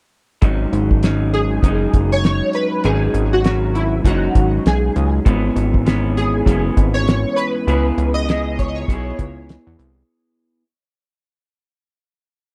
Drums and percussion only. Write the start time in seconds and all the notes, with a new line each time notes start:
0.42 kick, closed hi-hat
0.73 closed hi-hat
0.91 kick
1.03 snare, closed hi-hat
1.34 closed hi-hat
1.63 kick, closed hi-hat
1.93 kick, closed hi-hat
2.24 snare, closed hi-hat
2.53 closed hi-hat
2.84 closed hi-hat
3.14 closed hi-hat
3.44 snare, closed hi-hat
3.75 closed hi-hat
4.04 kick, closed hi-hat
4.35 kick, closed hi-hat
4.66 snare, closed hi-hat
4.96 closed hi-hat
5.26 kick, closed hi-hat
5.56 closed hi-hat
5.74 kick
5.86 snare, closed hi-hat
6.17 closed hi-hat
6.46 kick, closed hi-hat
6.77 kick, closed hi-hat
7.08 snare, closed hi-hat
7.38 closed hi-hat
7.68 closed hi-hat
7.98 closed hi-hat
8.29 snare, closed hi-hat
8.59 kick, closed hi-hat
8.88 kick, closed hi-hat
9.19 kick, closed hi-hat
9.49 snare, closed hi-hat
9.79 closed hi-hat